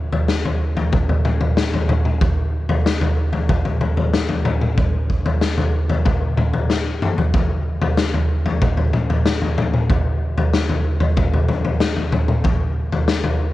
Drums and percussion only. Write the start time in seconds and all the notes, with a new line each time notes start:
0.13 floor tom
0.28 snare
0.45 floor tom
0.77 floor tom
0.92 kick, floor tom, mid tom
1.09 floor tom
1.25 floor tom, mid tom
1.41 floor tom
1.57 snare
1.74 floor tom
1.89 floor tom, mid tom
2.05 mid tom
2.21 kick, floor tom
2.69 floor tom
2.86 snare
3.01 floor tom
3.33 floor tom
3.49 kick, floor tom, mid tom
3.65 floor tom
3.81 floor tom, mid tom
3.97 floor tom
4.14 snare
4.29 floor tom
4.45 floor tom, mid tom
4.61 mid tom
4.78 kick, floor tom
5.10 kick
5.26 floor tom
5.41 snare
5.58 floor tom
5.89 floor tom
6.05 kick, floor tom, mid tom
6.37 floor tom, mid tom
6.53 floor tom
6.70 snare
7.02 mid tom
7.18 floor tom
7.34 kick, floor tom
7.82 floor tom
7.97 snare
8.14 floor tom
8.46 floor tom
8.62 kick, floor tom, mid tom
8.77 floor tom
8.93 floor tom, mid tom
9.10 floor tom
9.26 snare
9.42 floor tom
9.58 floor tom, mid tom
9.74 mid tom
9.90 kick, floor tom
10.38 floor tom
10.54 snare
10.69 floor tom
11.00 floor tom
11.17 kick, floor tom, mid tom
11.34 floor tom
11.49 floor tom, mid tom
11.65 floor tom
11.80 snare
11.96 floor tom
12.12 floor tom, mid tom
12.28 mid tom
12.44 kick, floor tom
12.92 floor tom
13.08 snare
13.24 floor tom